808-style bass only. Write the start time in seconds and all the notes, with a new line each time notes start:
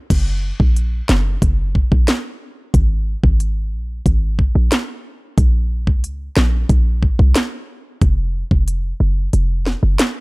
0.10 F#1
0.60 A#1
1.09 F#1
1.42 F#1
1.92 A#1
2.74 G#1
3.23 G#1
3.73 A#1
4.06 G#1
4.55 A#1
5.38 A#1
5.87 C#2
6.37 A#1
6.69 A#1
7.19 C2
8.02 F1
8.51 F1
9.00 F#1
9.33 F1
9.83 F#1